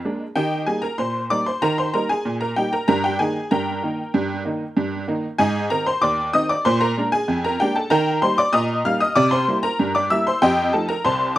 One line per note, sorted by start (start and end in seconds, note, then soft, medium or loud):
0.00 0.33 A#4 medium
0.00 0.32 F5 medium
0.05 0.22 G#3 medium
0.05 0.23 A#3 medium
0.05 0.23 D4 medium
0.36 0.63 D#3 loud
0.36 0.66 G4 medium
0.36 0.66 D#5 medium
0.36 0.61 G5 loud
0.66 0.84 G3 medium
0.66 0.85 A#3 medium
0.66 0.85 D#4 medium
0.66 0.83 G#4 medium
0.66 0.83 G#5 loud
0.82 0.98 A#4 medium
0.82 0.99 A#5 loud
0.98 1.26 A#2 medium
0.98 1.29 C5 medium
0.98 1.24 C6 loud
1.30 1.48 G3 medium
1.30 1.48 A#3 medium
1.30 1.49 D#4 medium
1.30 1.46 D5 medium
1.30 1.46 D6 loud
1.46 1.62 C5 medium
1.46 1.62 C6 loud
1.62 1.89 D#3 loud
1.62 1.78 A#4 medium
1.62 1.78 A#5 loud
1.78 1.94 C5 medium
1.78 1.94 C6 loud
1.94 2.11 G3 medium
1.94 2.12 A#3 medium
1.94 2.12 D#4 medium
1.94 2.09 A#4 medium
1.94 2.10 A#5 loud
2.09 2.39 G#4 medium
2.09 2.35 G#5 loud
2.25 2.52 A#2 medium
2.41 2.56 A#4 medium
2.41 2.57 A#5 medium
2.56 2.74 G3 medium
2.56 2.75 A#3 medium
2.56 2.75 D#4 medium
2.56 2.72 G4 medium
2.56 2.72 G5 loud
2.73 2.87 A#4 medium
2.73 2.86 A#5 loud
2.88 3.15 G2 loud
2.88 3.03 A#4 loud
2.88 3.04 A#5 loud
3.04 3.19 G4 medium
3.04 3.20 G5 loud
3.19 3.37 D#3 medium
3.19 3.37 A#3 medium
3.19 3.38 D#4 medium
3.19 3.49 G#4 medium
3.19 3.49 G#5 loud
3.51 3.78 G2 medium
3.51 5.36 A#4 medium
3.51 5.36 G5 medium
3.51 5.02 A#5 loud
3.83 4.00 D#3 medium
3.83 4.01 A#3 medium
3.83 4.01 D#4 medium
4.14 4.41 G2 loud
4.45 4.63 D#3 medium
4.45 4.63 A#3 medium
4.45 4.63 D#4 medium
4.77 5.03 G2 loud
5.08 5.25 D#3 medium
5.08 5.26 A#3 medium
5.08 5.26 D#4 medium
5.38 5.66 G#2 loud
5.38 5.69 G#4 loud
5.38 5.69 D#5 medium
5.38 5.69 G#5 loud
5.70 5.88 D#3 medium
5.70 5.88 C4 medium
5.70 5.89 D#4 medium
5.70 5.86 A#4 medium
5.70 5.86 A#5 loud
5.86 6.02 C5 medium
5.86 6.02 C6 loud
6.02 6.29 D#2 medium
6.02 6.32 D5 medium
6.02 6.32 D6 loud
6.33 6.51 D#3 medium
6.33 6.51 C4 medium
6.33 6.52 D#4 medium
6.33 6.49 D#5 loud
6.33 6.49 D#6 loud
6.49 6.65 D5 medium
6.49 6.65 D6 loud
6.65 6.92 A#2 loud
6.65 6.80 C5 loud
6.65 6.81 C6 loud
6.81 7.10 A#4 medium
6.81 7.06 A#5 loud
6.97 7.14 G#3 medium
6.97 7.15 A#3 medium
6.97 7.15 D4 medium
7.12 7.42 G#4 medium
7.12 7.42 G#5 loud
7.28 7.55 F2 loud
7.44 7.59 A#4 medium
7.44 7.60 A#5 loud
7.60 7.78 G#3 medium
7.60 7.78 A#3 medium
7.60 7.78 D4 medium
7.60 7.75 G4 medium
7.60 7.75 G5 loud
7.76 7.91 A4 medium
7.76 7.91 A5 loud
7.90 8.18 D#3 loud
7.90 8.20 A#4 loud
7.90 8.20 G5 loud
7.90 8.20 A#5 loud
8.22 8.40 G3 medium
8.22 8.40 A#3 medium
8.22 8.40 D#4 medium
8.22 8.37 C5 medium
8.22 8.38 C6 loud
8.38 8.53 D5 loud
8.38 8.54 D6 loud
8.53 8.80 A#2 loud
8.53 8.83 D#5 medium
8.53 8.83 A#5 loud
8.53 8.78 D#6 loud
8.85 9.03 G3 medium
8.85 9.03 A#3 medium
8.85 9.03 D#4 medium
8.85 9.00 F5 loud
8.85 9.01 F6 loud
9.00 9.16 D#5 medium
9.00 9.16 D#6 loud
9.15 9.43 C3 loud
9.15 9.31 D5 loud
9.15 9.32 D6 loud
9.31 9.62 C5 loud
9.31 9.57 C6 loud
9.48 9.65 G3 medium
9.48 9.65 A#3 medium
9.48 9.66 E4 medium
9.63 9.93 A#4 medium
9.63 9.93 A#5 loud
9.79 10.06 G2 loud
9.95 10.10 D5 medium
9.95 10.11 D6 loud
10.10 10.28 G3 medium
10.10 10.29 A#3 medium
10.10 10.29 E4 medium
10.10 10.26 E5 medium
10.10 10.26 E6 loud
10.27 10.42 C5 medium
10.27 10.43 C6 loud
10.42 10.69 F2 loud
10.42 10.72 G4 loud
10.42 10.72 D#5 loud
10.42 10.72 G5 loud
10.73 10.91 F3 medium
10.73 10.91 A3 medium
10.73 10.92 D#4 medium
10.73 10.89 A4 medium
10.73 10.89 A5 loud
10.89 11.04 A#4 medium
10.89 11.05 A#5 loud
11.05 11.32 C2 loud
11.05 11.35 C5 medium
11.05 11.35 A5 medium
11.05 11.35 C6 loud